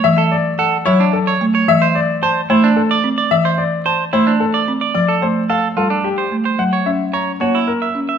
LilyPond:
<<
  \new Staff \with { instrumentName = "Grand piano" } { \time 3/4 \key a \major \tempo 4 = 110 e''16 r16 d''16 r16 fis''16 r16 cis''16 r16 a'16 r8. | e''16 r16 d''16 r16 a''16 r16 c''16 r16 a'16 r8. | e''16 r16 d''16 r16 a''16 r16 c''16 r16 a'16 r8. | d''16 r16 c''16 r16 f''16 r16 a'16 r16 g'16 r8. |
fis''16 r16 e''16 r16 ais''16 r16 cis''16 r16 ais'16 r8. | }
  \new Staff \with { instrumentName = "Clean electric guitar" } { \time 3/4 \key a \major r16 a'16 r8 a'16 r16 e'16 d'16 r16 cis''16 r16 cis''16 | r16 c''16 r8 c''16 r16 e'16 d'16 r16 d''16 r16 d''16 | r16 c''16 r8 c''16 r16 e'16 d'16 r16 d''16 r16 d''16 | r16 a'16 r8 a'16 r16 f'16 d'16 r16 c''16 r16 c''16 |
r16 cis''16 r8 cis''16 r16 fis'16 e'16 r16 e''16 r16 e''16 | }
  \new Staff \with { instrumentName = "Marimba" } { \time 3/4 \key a \major e16 r4 r16 fis16 r8. a16 r16 | e16 r4 r16 a16 r8. c'16 r16 | e16 r4 r16 a16 r8. c'16 r16 | f16 r16 a16 r8. g16 r8. a16 r16 |
fis16 r16 cis'16 r8. ais16 r8. cis'16 r16 | }
>>